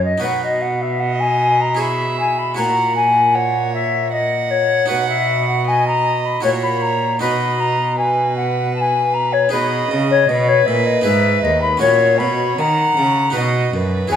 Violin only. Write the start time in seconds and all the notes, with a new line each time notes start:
1.00 D#5
1.80 E5
2.57 F#5
3.35 C#5
4.13 F#5
5.67 D#5
6.46 C#5
7.22 D#5
8.01 B4
9.55 D#5
10.30 B4
11.82 C#5
12.60 F#5
13.37 D#5
13.75 B4
14.13 C#5